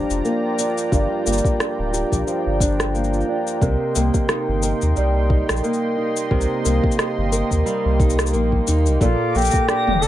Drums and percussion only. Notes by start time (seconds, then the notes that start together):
0.10 cabasa
0.25 cabasa
0.59 cabasa
0.78 cabasa
0.92 kick, cabasa
1.26 cabasa
1.33 cabasa
1.38 cabasa
1.45 kick, cabasa
1.60 cross-stick, cabasa
1.94 cabasa
2.12 kick, cabasa
2.28 cabasa
2.60 kick, cabasa
2.80 cross-stick, cabasa
2.95 cabasa
3.04 cabasa
3.13 cabasa
3.21 cabasa
3.47 cabasa
3.61 kick, cabasa
3.95 cabasa
4.14 kick, cabasa
4.29 cross-stick, cabasa
4.63 cabasa
4.82 cabasa
4.96 cabasa
5.30 kick
5.49 cross-stick, cabasa
5.57 cabasa
5.64 cabasa
5.74 cabasa
6.16 cabasa
6.31 kick
6.41 cabasa
6.65 cabasa
6.84 kick
6.92 cabasa
6.99 cross-stick, cabasa
7.33 cabasa
7.51 kick, cabasa
7.67 cabasa
8.00 kick, cabasa
8.10 cabasa
8.19 cross-stick, cabasa
8.26 cabasa
8.34 cabasa
8.52 kick
8.67 cabasa
8.86 cabasa
9.01 kick, cabasa
9.35 cabasa
9.38 cabasa
9.41 cabasa
9.44 cabasa
9.46 cabasa
9.51 kick, cabasa
9.54 cabasa
9.69 cross-stick, cabasa
9.87 mid tom
10.02 cabasa